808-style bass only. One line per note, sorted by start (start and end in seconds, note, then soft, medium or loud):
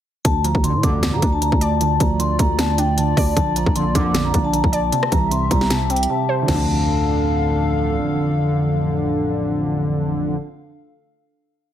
0.25 0.54 D2 loud
0.55 0.76 D2 loud
0.74 0.83 A2 loud
0.83 1.15 D2 loud
1.13 1.22 D3 loud
1.22 1.51 D2 loud
1.52 1.98 D2 loud
2.00 2.38 D2 loud
2.39 3.14 D2 loud
3.17 3.36 D2 loud
3.37 3.65 A#1 loud
3.66 3.94 A#1 loud
3.95 4.33 A#1 loud
4.34 4.63 A#1 loud
4.64 4.91 A#1 loud
5.12 5.49 C2 loud
5.51 6.07 C2 loud
6.48 8.00 D2 loud